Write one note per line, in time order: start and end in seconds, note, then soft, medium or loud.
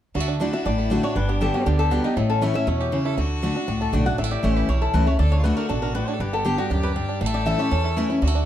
0.15 0.47 D2 medium
0.15 0.39 D3 medium
0.15 0.20 G3 medium
0.15 0.38 F#4 loud
0.20 0.40 A3 medium
0.28 0.40 D4 medium
0.40 0.53 D3 medium
0.40 0.53 A3 medium
0.40 0.52 D4 medium
0.40 0.53 D4 loud
0.40 1.17 E4 medium
0.40 0.52 F#4 medium
0.53 0.65 D4 medium
0.53 0.66 D4 medium
0.53 0.65 F#4 medium
0.53 0.65 E5 loud
0.65 0.97 A1 medium
0.65 1.14 A2 medium
0.65 0.90 D4 medium
0.65 1.01 D5 medium
0.78 1.14 A3 medium
0.90 1.03 D3 medium
0.90 1.03 A3 medium
0.90 1.02 D4 medium
0.90 1.03 D4 medium
0.90 1.02 F#4 medium
1.03 1.16 D4 medium
1.03 1.15 F#4 medium
1.03 1.16 C#5 medium
1.15 1.47 G1 medium
1.15 1.64 G2 medium
1.15 1.51 D3 medium
1.15 1.67 D4 medium
1.15 1.29 B4 medium
1.29 1.64 B3 medium
1.29 1.41 G4 medium
1.41 1.54 D3 medium
1.41 1.54 G3 medium
1.41 1.54 B3 medium
1.41 1.77 G4 medium
1.41 1.53 G4 medium
1.41 1.54 A4 medium
1.54 1.89 G3 medium
1.54 1.67 B3 soft
1.54 1.66 F#4 medium
1.54 1.66 G4 medium
1.66 1.98 D2 medium
1.66 1.90 D3 medium
1.66 2.18 B3 loud
1.66 2.02 D4 medium
1.66 1.78 G4 medium
1.79 2.14 G4 medium
1.79 1.91 A4 loud
1.91 2.04 D3 medium
1.91 2.16 G3 medium
1.91 2.04 G3 medium
1.91 2.04 B3 medium
1.91 2.04 F#4 medium
1.91 2.03 G4 loud
2.04 2.17 B3 medium
2.04 2.17 D4 medium
2.04 2.16 D#4 medium
2.04 2.16 G4 medium
2.16 2.48 A1 medium
2.16 2.65 A2 medium
2.16 2.42 A3 medium
2.16 2.94 C#4 medium
2.16 2.29 E4 medium
2.30 2.54 C#4 medium
2.30 2.42 A4 medium
2.41 2.54 E3 medium
2.41 2.55 A3 loud
2.41 2.84 A3 medium
2.41 2.54 C#4 loud
2.41 2.53 E4 loud
2.41 2.55 C#5 medium
2.54 2.90 C#4 medium
2.54 2.67 C#4 soft
2.54 2.66 E4 medium
2.54 2.67 E5 loud
2.67 2.99 E2 medium
2.67 2.91 B2 medium
2.67 3.03 E4 medium
2.67 3.39 C#5 medium
2.81 3.16 G4 medium
2.92 3.16 C#3 medium
2.92 3.18 C#4 medium
2.92 3.07 E4 loud
3.05 3.18 E4 medium
3.05 3.17 A4 loud
3.17 3.49 D2 medium
3.17 3.41 D3 medium
3.17 3.80 A3 medium
3.17 4.02 F#4 loud
3.42 3.55 D3 medium
3.42 3.55 A3 medium
3.42 3.55 D4 medium
3.42 3.56 D4 medium
3.42 3.54 F#4 medium
3.55 3.67 D4 medium
3.55 3.68 D4 soft
3.55 3.67 F#4 medium
3.68 3.90 C#2 medium
3.68 4.16 A2 medium
3.68 3.92 D4 medium
3.81 4.18 A3 medium
3.81 3.93 A4 medium
3.93 4.15 B1 medium
3.93 4.05 D3 medium
3.93 4.06 A3 medium
3.93 4.05 D4 soft
3.93 4.06 D4 medium
3.93 4.04 F#4 medium
3.93 4.06 D5 medium
4.05 4.19 D4 medium
4.05 4.18 F#4 medium
4.05 4.18 F#5 loud
4.18 4.34 A1 medium
4.18 4.66 A2 medium
4.18 4.24 G3 medium
4.18 5.16 E4 medium
4.18 4.31 E5 medium
4.24 4.44 A3 medium
4.31 4.55 G4 medium
4.31 4.43 D5 medium
4.43 4.65 A1 medium
4.43 4.67 E3 medium
4.43 4.68 A3 medium
4.43 4.68 C#4 loud
4.43 4.79 E4 medium
4.43 4.68 E4 medium
4.43 4.57 C#5 medium
4.57 4.92 G4 medium
4.57 4.69 B4 medium
4.68 4.90 B1 medium
4.68 5.17 E2 medium
4.68 5.04 C#4 medium
4.68 4.82 C#5 medium
4.82 5.17 E4 medium
4.82 4.94 A4 medium
4.94 5.15 C#2 medium
4.94 5.06 E3 medium
4.94 5.19 E3 medium
4.94 5.07 A3 medium
4.94 5.07 C#4 loud
4.94 5.05 E4 loud
4.94 5.07 B4 medium
5.06 5.18 A3 medium
5.06 5.20 C#4 soft
5.06 5.19 E4 medium
5.06 5.19 C#5 medium
5.19 5.51 D2 medium
5.19 5.43 D3 medium
5.19 5.43 A3 medium
5.19 5.37 A4 medium
5.19 5.31 D5 medium
5.32 5.56 D4 medium
5.32 5.43 C#5 loud
5.38 5.47 F4 medium
5.44 5.68 D3 medium
5.44 5.80 A3 medium
5.44 5.69 A3 medium
5.44 5.69 D4 medium
5.44 6.15 F#4 medium
5.44 5.69 F#4 loud
5.44 5.56 B4 medium
5.57 5.68 D4 medium
5.57 5.68 A#4 loud
5.69 6.02 A1 medium
5.69 5.94 B2 medium
5.69 5.81 D4 medium
5.69 5.82 A4 medium
5.82 5.94 D4 medium
5.82 5.94 A#4 medium
5.95 6.19 A2 medium
5.95 6.07 D4 medium
5.95 6.08 B4 medium
6.08 6.20 D4 medium
6.08 6.20 C#5 loud
6.14 6.22 A4 medium
6.20 6.52 G1 medium
6.20 6.68 G2 medium
6.20 6.56 D3 medium
6.20 7.23 G4 loud
6.20 6.33 B4 medium
6.33 6.68 B3 medium
6.33 6.45 A4 loud
6.45 6.57 D3 medium
6.45 6.58 G3 medium
6.45 6.58 B3 loud
6.45 6.81 G4 medium
6.45 6.58 G4 medium
6.45 6.57 G4 loud
6.58 6.93 G3 medium
6.58 6.71 B3 soft
6.58 6.70 F#4 medium
6.58 6.70 G4 medium
6.70 7.02 D2 medium
6.70 6.95 F#2 medium
6.70 7.06 D4 medium
6.70 6.83 G4 medium
6.83 7.19 G4 medium
6.83 6.91 B4 medium
6.96 7.20 G2 medium
6.96 7.20 G3 medium
7.09 7.21 D4 medium
7.21 7.53 A1 medium
7.21 7.69 A2 medium
7.21 7.26 G3 medium
7.21 7.98 A4 loud
7.26 7.46 A3 medium
7.34 7.58 G4 medium
7.34 7.46 D5 loud
7.46 7.58 E3 medium
7.46 7.59 A3 medium
7.46 7.59 C#4 medium
7.46 7.82 E4 medium
7.46 7.57 E4 medium
7.46 7.59 E5 loud
7.58 7.71 C#4 medium
7.58 7.71 E4 medium
7.58 7.94 G4 medium
7.58 8.18 C#5 medium
7.71 8.19 E2 medium
7.71 8.03 E2 medium
7.71 8.07 C#4 medium
7.84 8.19 E4 medium
7.97 8.09 E3 medium
7.97 8.22 E3 medium
7.97 8.09 A3 medium
7.97 8.10 C#4 medium
7.97 8.22 E4 loud
7.97 8.08 E4 loud
8.09 8.22 A3 medium
8.09 8.22 C#4 soft
8.09 8.21 E4 medium
8.22 8.46 D2 medium
8.22 8.46 D3 medium
8.22 8.27 G3 medium
8.22 8.46 F#4 loud
8.27 8.46 A3 medium
8.35 8.46 D4 medium